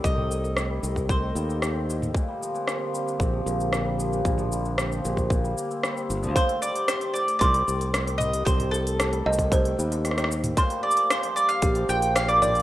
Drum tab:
HH |--------------------------------|--------------------------------|--------------------------------|o-o---o-o-o---o-o-o---o-o-o---o-|
SH |x---x-x-x---x-x-x---x-x-x---x-x-|x---x-x-x---x-x-x---x-x-x---x-x-|x-x-x-x-x-x-x-x-x-x-x-x-x-x-x-x-|x---x-x-x---x-x-x---x-x-x---x-x-|
SD |--------r---------------r-------|--------r---------------r-------|--------r---------------r-------|--------r---------------r-------|
T2 |--o---------------------------o-|--------------------------------|--o-----------------------------|----------------------------o---|
BD |o-------------o-o---------------|o---------------o---------------|o-------------o-o---------------|o---------------o---------------|

HH |o-o---o-o-o---o-o-o---o-o-o---o-|o-o---o-o-o---o-o-o---o-o-o---o-|
SH |x---x-x-x----xx-x---x-x-x---x-x-|x----x--x---x-x-x---x-x-x---x-x-|
SD |--------r---------------rrrr----|--------r---------------r-------|
T2 |--o---------------------------o-|----------------------------o---|
BD |o-------------o-o---------------|o---------------o---------------|